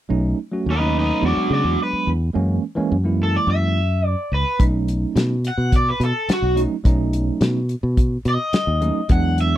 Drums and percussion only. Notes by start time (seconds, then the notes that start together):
4.60 kick, closed hi-hat
4.88 closed hi-hat
5.16 snare, closed hi-hat
5.45 closed hi-hat
5.72 kick, closed hi-hat
6.01 closed hi-hat
6.29 snare, closed hi-hat
6.57 closed hi-hat
6.85 kick, closed hi-hat
7.13 closed hi-hat
7.41 snare, closed hi-hat
7.69 closed hi-hat
7.97 kick, closed hi-hat
8.25 closed hi-hat
8.53 snare, closed hi-hat
8.82 closed hi-hat
9.09 kick, closed hi-hat
9.38 closed hi-hat